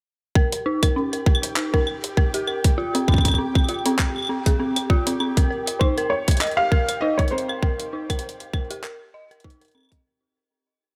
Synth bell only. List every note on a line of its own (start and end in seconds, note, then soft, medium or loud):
0.36 0.49 A#4 medium
0.66 0.79 D#4 medium
0.83 0.95 A#4 medium
0.96 1.10 C#4 medium
1.13 1.19 A#4 medium
1.26 1.42 A#4 medium
1.57 1.70 D#4 medium
1.74 1.80 A#4 medium
2.17 2.25 A#4 medium
2.34 2.41 G4 medium
2.47 2.61 A#4 medium
2.78 2.91 F4 loud
2.95 3.07 C4 medium
3.08 3.22 C#4 medium
3.25 3.31 C4 medium
3.38 3.55 C4 medium
3.69 3.82 F4 medium
3.86 3.92 C4 loud
4.29 4.37 C4 medium
4.46 4.53 G#4 medium
4.60 4.73 C4 medium
4.90 5.03 F4 loud
5.07 5.19 C4 medium
5.20 5.34 C4 medium
5.37 5.44 A#4 medium
5.50 5.67 A#4 medium
5.81 5.94 D#4 medium
5.98 6.04 A#4 medium
6.41 6.50 A#4 medium
6.58 6.65 G4 medium
6.72 6.85 A#4 medium
7.02 7.16 D#4 loud
7.19 7.32 A#4 medium
7.32 7.46 C4 medium
7.49 7.56 A#4 medium
7.63 7.79 A#4 medium
7.93 8.06 D#4 medium
8.10 8.16 A#4 medium
8.54 8.62 A#4 medium
8.70 8.77 G4 medium
8.84 8.97 A#4 medium
9.14 9.28 D#5 loud
9.31 9.37 A#4 medium
9.44 9.58 D#4 medium
9.61 9.72 A#4 medium
9.75 9.88 C4 medium